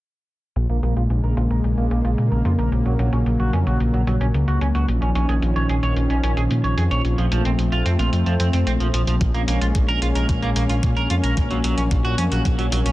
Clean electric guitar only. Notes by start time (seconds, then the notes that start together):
0.70 A#3
0.83 A#3
0.97 F4
1.24 A#4
1.37 F4
1.51 A#4
1.78 A#3
1.91 A#3
2.05 F4
2.32 A#4
2.45 F4
2.59 A#4
2.86 F#3
2.99 F#3
3.13 C#4
3.40 F#4
3.53 C#4
3.67 F#4
3.94 F#3
4.07 F#3
4.21 C#4
4.48 F#4
4.61 C#4
4.75 F#4
5.02 C#4
5.15 C#4
5.29 G#4
5.56 C#5
5.69 G#4
5.83 C#5
6.10 C#4
6.24 C#4
6.37 G#4
6.64 C#5
6.77 G#4
6.91 C#5
7.18 F3
7.32 F3
7.45 C4
7.72 F4
7.86 C4
7.99 F4
8.26 F3
8.40 C4
8.53 C4
8.67 C4
8.80 F3
8.94 F3
9.07 F3
9.34 A#3
9.48 A#3
9.61 F4
9.89 A#4
10.02 F4
10.15 A#4
10.43 A#3
10.56 A#3
10.70 F4
10.97 A#4
11.10 F4
11.23 A#4
11.51 F#3
11.64 F#3
11.78 C#4
12.05 F#4
12.18 C#4
12.32 F#4
12.59 F#3
12.72 F#3
12.86 C#4